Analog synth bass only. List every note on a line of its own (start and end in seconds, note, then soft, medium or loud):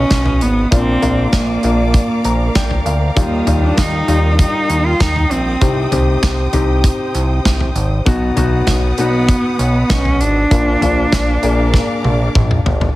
0.11 0.43 B1 medium
0.41 0.66 G#1 medium
0.72 0.97 A#1 medium
1.03 1.28 A#1 medium
1.33 1.58 A#1 medium
1.64 2.01 A#1 loud
2.25 2.50 A#1 medium
2.55 2.81 A#1 medium
2.86 3.11 D2 medium
3.16 3.42 D#2 medium
3.47 3.72 D#2 medium
3.78 4.03 D#2 loud
4.08 4.46 D#2 medium
4.69 4.94 D#2 medium
5.00 5.25 D#2 medium
5.31 5.56 A#1 medium
5.62 5.87 C2 medium
5.92 6.17 C2 medium
6.23 6.48 C2 loud
6.54 6.91 C2 medium
7.15 7.40 C2 medium
7.45 7.70 C2 medium
7.76 8.01 G#1 medium
8.06 8.31 B1 medium
8.37 8.62 B1 medium
8.68 8.93 B1 loud
8.99 9.36 B1 medium
9.59 9.84 B1 medium
9.90 10.22 B1 medium
10.20 10.46 G#1 medium
10.51 10.76 A#1 loud
10.81 11.06 A#1 medium
11.12 11.37 A#1 loud
11.43 11.80 A#1 medium
12.04 12.29 A#1 medium
12.35 12.60 A#1 medium
12.65 12.90 G1 medium